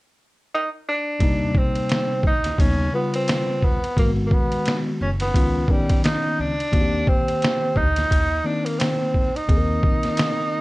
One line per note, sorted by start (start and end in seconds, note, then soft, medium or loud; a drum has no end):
0.55 0.70 D#4 medium
0.89 1.59 D4 loud
1.19 1.49 D#2 medium
1.19 2.30 C3 medium
1.19 2.31 G3 medium
1.19 2.31 A#3 medium
1.19 2.32 D#4 medium
1.19 kick medium
1.19 ride medium
1.55 2.26 C4 loud
1.55 kick loud
1.76 ride soft
1.89 snare medium
1.89 hi-hat pedal soft
1.89 ride medium
2.23 2.52 D2 medium
2.23 2.62 D#4 medium
2.23 kick medium
2.44 snare soft
2.44 ride medium
2.58 2.87 D#2 medium
2.58 2.87 C#3 medium
2.58 2.88 G3 medium
2.58 2.88 B3 medium
2.58 2.94 C#4 medium
2.58 2.88 D#4 medium
2.58 kick medium
2.58 ride medium
2.92 3.77 C#3 medium
2.92 3.77 G3 medium
2.92 3.13 B3 medium
2.92 3.78 F4 medium
2.92 3.78 B4 medium
3.14 3.67 C4 medium
3.14 ride medium
3.28 snare medium
3.28 hi-hat pedal soft
3.28 ride medium
3.62 3.79 D#2 medium
3.62 3.98 B3 loud
3.62 kick medium
3.84 ride soft
3.96 4.25 G#1 medium
3.96 5.07 D#3 medium
3.96 5.07 G#3 medium
3.96 4.05 A#3 soft
3.96 4.11 A#3 medium
3.96 5.08 F#4 medium
3.96 kick medium
3.96 ride medium
4.05 5.11 B3 medium
4.27 4.35 A#3 medium
4.31 4.76 B3 loud
4.31 kick loud
4.52 ride soft
4.65 snare medium
4.65 hi-hat pedal soft
4.65 ride medium
5.01 5.29 F#1 medium
5.01 5.11 C#4 medium
5.20 5.73 B3 medium
5.20 snare soft
5.20 ride medium
5.34 5.63 C#2 medium
5.34 5.63 D#3 medium
5.34 5.63 B3 medium
5.34 5.64 C#4 medium
5.34 5.65 F4 medium
5.34 kick medium
5.34 ride medium
5.68 6.53 D#3 medium
5.68 6.04 G3 medium
5.68 6.53 B3 medium
5.68 6.54 C#4 medium
5.68 6.54 D#4 medium
5.68 kick medium
5.90 kick medium
5.90 ride medium
6.04 6.42 D#4 medium
6.04 snare loud
6.04 hi-hat pedal medium
6.04 ride medium
6.39 6.55 C#2 medium
6.39 7.10 D4 loud
6.60 ride soft
6.72 7.01 D#2 loud
6.72 7.82 D#3 medium
6.72 7.83 A#3 medium
6.72 7.83 C4 medium
6.72 6.81 F#4 medium
6.72 kick medium
6.72 ride medium
6.81 7.87 G4 medium
7.07 7.78 C4 loud
7.07 kick loud
7.28 ride soft
7.42 snare loud
7.42 hi-hat pedal soft
7.42 ride medium
7.76 8.05 D2 medium
7.76 8.48 D#4 loud
7.76 kick medium
7.96 snare soft
7.96 ride medium
8.11 8.39 D#2 medium
8.11 kick medium
8.11 ride medium
8.44 9.29 D#3 medium
8.44 9.29 A#3 medium
8.44 9.30 C4 medium
8.44 8.67 D4 medium
8.44 9.30 D#4 medium
8.66 8.81 A#3 medium
8.66 ride medium
8.80 9.38 C4 medium
8.80 snare medium
8.80 hi-hat pedal soft
8.80 ride medium
9.14 9.31 D#2 medium
9.14 kick medium
9.36 10.61 D#4 medium
9.36 ride soft
9.48 9.77 D#2 medium
9.48 10.58 D#3 medium
9.48 10.59 A#3 medium
9.48 10.59 C4 medium
9.48 9.57 G#4 medium
9.48 kick medium
9.48 ride medium
9.57 10.61 A#4 medium
9.83 kick medium
10.03 snare soft
10.03 ride soft
10.17 snare loud
10.17 hi-hat pedal soft
10.17 ride medium